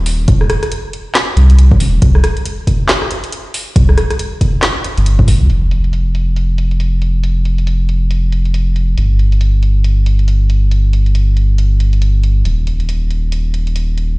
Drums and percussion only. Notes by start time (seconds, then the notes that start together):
0.06 open hi-hat
0.28 kick, closed hi-hat
0.41 cross-stick
0.50 cross-stick, closed hi-hat
0.63 cross-stick, closed hi-hat
0.72 closed hi-hat
0.93 closed hi-hat
1.15 snare, clap, closed hi-hat
1.37 closed hi-hat
1.50 closed hi-hat
1.59 closed hi-hat
1.71 kick
1.80 open hi-hat
2.02 kick, closed hi-hat
2.15 cross-stick
2.24 cross-stick, closed hi-hat
2.37 closed hi-hat
2.46 closed hi-hat
2.67 kick, closed hi-hat
2.89 snare, clap, closed hi-hat
3.02 cross-stick
3.11 closed hi-hat
3.24 closed hi-hat
3.32 closed hi-hat
3.54 open hi-hat
3.76 kick, closed hi-hat
3.89 cross-stick
3.98 cross-stick, closed hi-hat
4.10 cross-stick, closed hi-hat
4.19 closed hi-hat
4.41 kick, closed hi-hat
4.63 snare, clap, closed hi-hat
4.84 closed hi-hat
4.97 closed hi-hat
5.06 closed hi-hat
5.19 kick
5.28 kick, open hi-hat
5.50 closed hi-hat
5.71 closed hi-hat
5.84 closed hi-hat
5.93 closed hi-hat
6.15 closed hi-hat
6.36 closed hi-hat
6.58 closed hi-hat
6.71 closed hi-hat
6.80 closed hi-hat
7.02 closed hi-hat
7.24 closed hi-hat
7.45 closed hi-hat
7.58 closed hi-hat
7.67 closed hi-hat
7.89 closed hi-hat
8.11 closed hi-hat
8.32 closed hi-hat
8.45 closed hi-hat
8.54 closed hi-hat
8.76 closed hi-hat
8.98 closed hi-hat
9.19 closed hi-hat
9.32 closed hi-hat
9.41 closed hi-hat
9.63 closed hi-hat
9.84 closed hi-hat
10.06 closed hi-hat
10.19 closed hi-hat
10.28 closed hi-hat
10.50 closed hi-hat
10.71 closed hi-hat
10.93 closed hi-hat
11.06 closed hi-hat
11.15 closed hi-hat
11.37 closed hi-hat
11.58 closed hi-hat
11.80 closed hi-hat
11.93 closed hi-hat
12.02 closed hi-hat
12.23 closed hi-hat
12.45 closed hi-hat
12.67 closed hi-hat
12.80 closed hi-hat
12.89 closed hi-hat
13.11 closed hi-hat
13.32 closed hi-hat
13.54 closed hi-hat
13.67 closed hi-hat
13.76 closed hi-hat
13.98 closed hi-hat